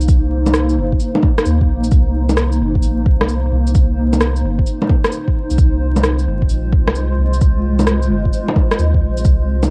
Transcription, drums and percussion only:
0.01 shaker
0.08 kick, shaker
0.46 low bongo, shaker
0.54 cross-stick, shaker
0.69 shaker
0.93 kick
1.00 shaker
1.15 low bongo
1.23 kick, low bongo
1.38 cross-stick, shaker
1.45 shaker
1.61 kick
1.84 shaker
1.91 kick, shaker
2.29 low bongo, shaker
2.37 cross-stick, shaker
2.52 shaker
2.76 kick
2.83 shaker
3.06 kick
3.21 cross-stick, low bongo
3.29 shaker
3.67 shaker
3.75 kick, shaker
4.13 low bongo, shaker
4.21 cross-stick, shaker
4.36 shaker
4.59 kick
4.66 shaker
4.82 low bongo
4.89 kick, low bongo
5.04 cross-stick, shaker
5.12 shaker
5.28 kick
5.50 shaker
5.58 kick, shaker
5.96 low bongo, shaker
6.04 cross-stick, shaker
6.19 shaker
6.42 kick
6.49 shaker
6.73 kick
6.88 cross-stick, low bongo
6.95 shaker
7.33 shaker
7.41 kick, shaker
7.79 low bongo, shaker
7.87 cross-stick, shaker
8.03 shaker
8.25 kick
8.33 shaker
8.48 low bongo
8.56 kick, low bongo
8.71 cross-stick, shaker
8.79 shaker
8.94 kick
9.17 shaker
9.24 kick, shaker
9.63 low bongo, shaker

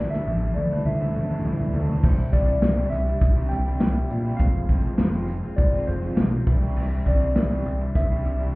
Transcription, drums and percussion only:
0.13 snare
0.28 high tom
0.43 high tom
0.58 high tom
0.72 mid tom
0.87 mid tom
1.01 mid tom
1.15 mid tom
1.30 mid tom
1.45 mid tom
1.59 floor tom
1.74 floor tom
1.88 floor tom
2.03 kick, crash
2.33 kick, closed hi-hat
2.62 snare, closed hi-hat
2.92 closed hi-hat
3.07 closed hi-hat
3.21 kick, closed hi-hat
3.51 closed hi-hat
3.66 closed hi-hat
3.80 snare, closed hi-hat
3.95 closed hi-hat
4.10 closed hi-hat
4.39 kick, closed hi-hat
4.54 closed hi-hat
4.69 kick, closed hi-hat
4.84 closed hi-hat
4.98 snare, closed hi-hat
5.13 closed hi-hat
5.28 closed hi-hat
5.58 kick, closed hi-hat
5.72 closed hi-hat
5.87 closed hi-hat
6.17 snare, closed hi-hat
6.46 kick, snare, closed hi-hat
6.61 closed hi-hat
6.76 crash
7.06 kick, closed hi-hat
7.36 snare, closed hi-hat
7.66 closed hi-hat
7.81 closed hi-hat
7.95 kick, closed hi-hat
8.25 closed hi-hat
8.40 closed hi-hat

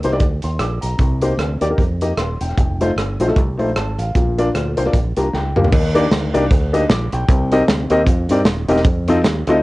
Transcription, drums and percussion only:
0.03 closed hi-hat
0.11 cross-stick
0.20 kick, closed hi-hat
0.42 closed hi-hat
0.59 cross-stick, closed hi-hat
0.82 closed hi-hat
0.99 kick, closed hi-hat
1.22 closed hi-hat
1.39 cross-stick, closed hi-hat
1.61 closed hi-hat
1.78 kick, closed hi-hat
2.01 closed hi-hat
2.17 cross-stick, closed hi-hat
2.41 closed hi-hat
2.49 cross-stick
2.58 kick, closed hi-hat
2.81 closed hi-hat
2.98 cross-stick, closed hi-hat
3.20 closed hi-hat
3.28 cross-stick
3.36 kick, closed hi-hat
3.59 closed hi-hat
3.76 cross-stick, closed hi-hat
3.99 closed hi-hat
4.15 kick, closed hi-hat
4.38 closed hi-hat
4.55 cross-stick, closed hi-hat
4.77 closed hi-hat
4.86 cross-stick
4.93 kick, closed hi-hat
5.17 closed hi-hat
5.33 snare
5.56 mid tom
5.64 floor tom
5.72 kick, crash
5.95 closed hi-hat
6.11 snare, closed hi-hat
6.34 closed hi-hat
6.51 kick, closed hi-hat
6.74 closed hi-hat
6.90 snare, closed hi-hat
7.13 closed hi-hat
7.29 kick, closed hi-hat
7.52 closed hi-hat
7.68 snare, closed hi-hat
7.90 closed hi-hat
8.07 kick, closed hi-hat
8.29 closed hi-hat
8.45 snare, closed hi-hat
8.69 closed hi-hat
8.76 snare
8.85 kick, closed hi-hat
9.08 closed hi-hat
9.24 snare, closed hi-hat
9.47 closed hi-hat

